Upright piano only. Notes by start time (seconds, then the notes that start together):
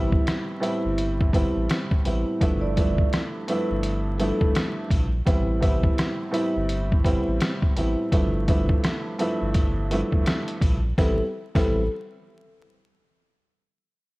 Already playing: A2 G3 B3 C4 E4
0.60 A2 G3 B3 C4 E4
1.32 A2 G3 B3 C4 E4
2.05 A2 G3 B3 C4 E4
2.40 G2 F3 A3 B3 D4 E4
2.77 G2 F3 A3 B3 D4 E4
3.48 G2 F3 A3 B3 D4 E4
4.19 G2 F3 A3 B3 D4 E4
5.25 A2 G3 B3 C4 E4
5.60 A2 G3 B3 C4 E4
6.31 A2 G3 B3 C4 E4
7.04 A2 G3 B3 C4 E4
7.76 A2 G3 B3 C4 E4
8.11 G2 F3 A3 B3 D4 E4
8.48 G2 F3 A3 B3 D4 E4
9.19 G2 F3 A3 B3 D4 E4
9.91 G2 F3 A3 B3 D4 E4
10.98 G3 B3 C4 E4
11.54 G3 B3 C4 E4